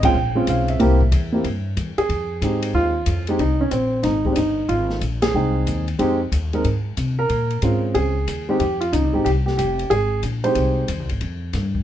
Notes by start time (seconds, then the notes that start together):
Already playing: G#1
0.03 G#3 C4 C#4 F4 G5, kick, ride
0.15 A#1
0.35 G#3 C4 C#4 F4
0.47 B1 F5, kick, hi-hat pedal, ride
0.68 E5, ride
0.79 C2 A#3 C4 E4 G4, kick, ride
1.01 kick
1.12 E2, kick, hi-hat pedal, ride
1.32 A#3 C4 E4 G4
1.44 G2, kick, ride
1.77 E2, kick, hi-hat pedal, ride
1.98 G#4, muted upright bass stroke, ride
2.09 F2, kick, ride
2.42 G#2 G#3 C4 D#4 G4, kick, hi-hat pedal, ride
2.62 ride
2.74 D#2 F4, kick
3.06 F2, kick, hi-hat pedal, ride
3.27 G#3 C4 D#4 G4, ride
3.39 C2 D#4, kick, ride
3.61 C#4
3.71 A#1 C4, kick, hi-hat pedal, ride
4.03 G#1 D#4, kick, snare, ride
4.25 G#3 C4 D#4 G4, kick
4.32 G1 D4, hi-hat pedal, ride
4.36 D#4, kick
4.69 G#1 F4, kick, ride
4.90 snare
5.01 A#1, kick, hi-hat pedal, ride
5.22 G#4, snare, ride
5.34 C2 G#3 C4 D#4 G5
5.67 D#2, kick, hi-hat pedal, ride
5.88 ride
5.99 F2 G#3 C4 D#4 G4, kick, ride
6.32 D#2, kick, hi-hat pedal, ride
6.53 G#3 C4 D#4 A#4, ride
6.64 G#2, kick, ride
6.97 C3, kick, hi-hat pedal, ride
7.19 A#4
7.29 A#2, kick, ride
7.50 ride
7.62 G#2 G#3 C4 C#4 F4, kick, hi-hat pedal, ride
7.94 C#2 G#4, kick, ride
8.28 D#2, kick, hi-hat pedal, ride
8.49 G#3 C4 D#4 G4
8.60 F2 G4, kick, ride
8.80 F4, ride
8.92 C#2 D#4, kick, hi-hat pedal, ride
9.03 C2
9.13 G#1 G#3 C4 D#4 G4
9.25 C2 G4, kick, ride
9.46 G4, snare
9.57 F1 G4, kick, hi-hat pedal, ride
9.79 ride
9.90 G#1 G#4, kick, ride
10.23 A#1, kick, hi-hat pedal, ride
10.44 G#3 C4 D#4 G4 C5, ride
10.55 C2, kick, ride
10.88 D#2, kick, hi-hat pedal, ride
10.99 C2
11.09 G#1, ride
11.21 F2, kick, ride
11.53 G2, kick, snare, hi-hat pedal, ride
11.75 kick